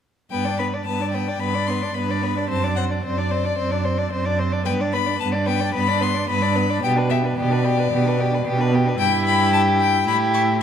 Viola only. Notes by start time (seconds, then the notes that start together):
0.32 B3
0.46 D4
0.60 B3
0.74 D4
0.87 B3
1.00 D4
1.14 B3
1.28 D4
1.42 B3
1.55 D4
1.68 B3
1.83 D4
1.96 B3
2.09 D4
2.22 B3
2.35 D4
2.50 C4
2.63 D4
2.77 C4
2.90 D4
3.04 C4
3.17 D4
3.31 C4
3.44 D4
3.57 C4
3.71 D4
3.84 C4
3.98 D4
4.12 C4
4.25 D4
4.39 C4
4.52 D4
4.66 B3
4.80 D4
4.94 B3
5.08 D4
5.21 B3
5.35 D4
5.48 B3
5.62 D4
5.75 B3
5.89 D4
6.01 B3
6.15 D4
6.28 B3
6.42 D4
6.56 B3
6.70 D4
6.83 B3
6.96 D4
7.10 B3
7.23 D4
7.37 B3
7.50 D4
7.63 B3
7.77 D4
7.91 B3
8.05 D4
8.18 B3
8.31 D4
8.45 B3
8.58 D4
8.72 B3
8.85 D4
8.98 E4
10.06 E4
10.59 E4